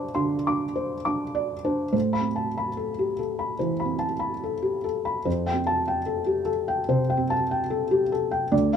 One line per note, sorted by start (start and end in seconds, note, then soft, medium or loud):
0.00 0.11 G2 medium
0.00 0.47 D4 soft
0.00 0.76 C5 soft
0.00 1.35 D5 soft
0.00 0.15 C6 medium
0.00 0.47 D6 medium
0.15 0.64 D3 soft
0.15 0.63 C6 medium
0.47 0.94 D4 soft
0.47 0.94 D6 soft
0.76 1.24 C5 soft
1.05 1.54 D4 soft
1.05 1.53 D6 soft
1.35 1.83 D5 soft
1.64 1.94 D4 soft
1.64 1.91 C5 soft
1.93 3.56 A2 soft
1.93 2.27 C5 soft
2.13 2.48 B5 soft
2.21 2.67 C4 soft
2.36 2.70 A5 soft
2.58 2.91 B5 soft
2.77 3.11 A4 soft
2.99 3.20 G4 soft
3.19 3.52 A4 soft
3.39 3.72 B5 soft
3.59 4.04 E3 soft
3.59 3.93 C5 soft
3.80 4.14 B5 soft
3.85 4.31 C4 soft
3.99 4.34 A5 soft
4.19 4.54 B5 soft
4.43 4.77 A4 soft
4.62 4.84 G4 soft
4.84 5.18 A4 soft
5.05 5.26 B5 soft
5.25 6.85 F2 soft
5.25 5.59 C5 soft
5.46 5.80 G5 soft
5.53 5.97 C4 soft
5.67 6.00 A5 medium
5.88 6.20 G5 soft
6.06 6.40 A4 soft
6.26 6.48 G4 soft
6.45 6.80 A4 soft
6.68 7.01 G5 soft
6.88 7.33 C3 soft
6.88 7.22 C5 medium
7.10 7.42 G5 soft
7.17 7.60 C4 soft
7.30 7.63 A5 medium
7.51 7.84 G5 soft
7.70 8.03 A4 soft
7.91 8.12 G4 soft
8.12 8.44 A4 soft
8.31 8.52 G5 medium
8.52 8.77 D2 medium
8.52 8.77 D5 medium
8.73 8.77 F5 soft